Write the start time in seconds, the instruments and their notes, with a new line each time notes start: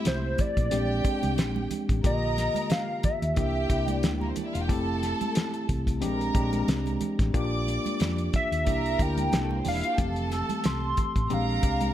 Already playing: tine electric piano A3 C4 E4 G4, violin section E4 E5
0.05 fingered electric bass C2, analog synth lead C5, snare, closed hi-hat, muted conga, high conga
0.38 analog synth lead D5, kick, closed hi-hat, muted conga, low conga
0.57 fingered electric bass A#1, kick, closed hi-hat
0.71 fingered electric bass A#1, tine electric piano G#3 C4 D4 G4, violin section G4 G5, closed hi-hat, muted conga, low conga
1.04 tine electric piano G#3 C4 D4 G4, muted fingered electric bass stroke, kick, closed hi-hat, muted conga
1.23 fingered electric bass C2, closed hi-hat, high conga
1.38 fingered electric bass A#1, snare, closed hi-hat, muted conga, high conga
1.56 high conga
1.71 closed hi-hat, muted conga, high conga, low conga
1.89 fingered electric bass A1, kick, closed hi-hat
2.03 fingered electric bass A#1, tine electric piano D3 A#3 F4 G4, violin section A#4 A#5, analog synth lead D#5, kick, closed hi-hat, muted conga
2.37 snare, closed hi-hat, muted conga
2.55 closed hi-hat, high conga
2.70 analog synth lead F5, snare, closed hi-hat, muted conga, high conga
3.03 analog synth lead E5, muted fingered electric bass stroke, kick, closed hi-hat, muted conga, low conga
3.22 fingered electric bass D#2, closed hi-hat
3.36 fingered electric bass C2, tine electric piano A#3 D4 E4 G4, violin section G4 G5, kick, closed hi-hat, low conga
3.70 fingered electric bass C2, tine electric piano A#3 D4 E4 G4, kick, closed hi-hat
3.88 analog synth lead D5, closed hi-hat, high conga
4.03 fingered electric bass D2, snare, closed hi-hat, muted conga, high conga
4.21 violin section A#3 A#4, high conga
4.29 violin section C4 C5
4.36 violin section D4 D5, closed hi-hat, high conga, low conga
4.45 violin section E4 E5
4.54 fingered electric bass E1, violin section F4 F5, closed hi-hat
4.61 violin section G4 G5
4.68 fingered electric bass F1, tine electric piano A3 C4 E4 G4, violin section A4 A5, kick, closed hi-hat, muted conga
5.03 snare, closed hi-hat
5.21 closed hi-hat, high conga
5.35 snare, closed hi-hat, muted conga, high conga
5.54 closed hi-hat
5.69 fingered electric bass C2, kick, closed hi-hat, low conga
5.87 kick, closed hi-hat
6.01 fingered electric bass A#1, tine electric piano G#3 C4 D4 G4, violin section A#4 A#5, closed hi-hat, low conga
6.21 closed hi-hat
6.34 fingered electric bass A#1, tine electric piano G#3 C4 D4 G4, kick, closed hi-hat, muted conga
6.53 closed hi-hat, high conga
6.68 fingered electric bass C2, snare, closed hi-hat, muted conga, high conga
6.86 closed hi-hat, high conga
7.01 closed hi-hat, muted conga, high conga, low conga
7.19 fingered electric bass A1, kick, snare, closed hi-hat
7.34 fingered electric bass A#1, tine electric piano A#3 D4 F4 G4, violin section D5 D6, kick, closed hi-hat
7.67 closed hi-hat, muted conga
7.86 closed hi-hat, high conga
8.00 fingered electric bass F2, snare, closed hi-hat, muted conga, high conga
8.18 closed hi-hat
8.33 analog synth lead E5, kick, closed hi-hat, low conga
8.52 fingered electric bass D#2, closed hi-hat
8.66 fingered electric bass C2, tine electric piano A#3 D4 E4 G4, violin section A#4 A#5, kick, closed hi-hat, muted conga, low conga
8.86 closed hi-hat
8.99 fingered electric bass D2, tine electric piano A#3 D4 E4 G4, analog synth lead G5, kick, closed hi-hat, muted conga
9.18 closed hi-hat, high conga
9.32 fingered electric bass C2, snare, closed hi-hat, high conga
9.40 violin section A3 A4
9.50 violin section A#3 A#4, high conga
9.57 violin section C4 C5
9.65 fingered electric bass E1, violin section D4 D5, analog synth lead F5, open hi-hat, high conga, low conga
9.73 violin section E4 E5
9.82 violin section F4 F5, closed hi-hat
9.91 violin section G4 G5
9.98 fingered electric bass F1, tine electric piano E3 A3 C4 G4, violin section A4 A5, kick, closed hi-hat, muted conga
10.16 closed hi-hat
10.31 vibraphone E6, snare, closed hi-hat, muted conga
10.49 closed hi-hat, high conga
10.64 fingered electric bass C2, analog synth lead C6, snare, closed hi-hat, high conga
10.97 kick, closed hi-hat, low conga
11.16 fingered electric bass A1, kick, closed hi-hat
11.30 fingered electric bass A#1, tine electric piano G#3 C4 D4 G4, violin section A#4 A#5, analog synth lead F5, closed hi-hat, muted conga, low conga
11.63 fingered electric bass C2, tine electric piano G#3 C4 D4 G4, kick, closed hi-hat, muted conga
11.81 closed hi-hat, high conga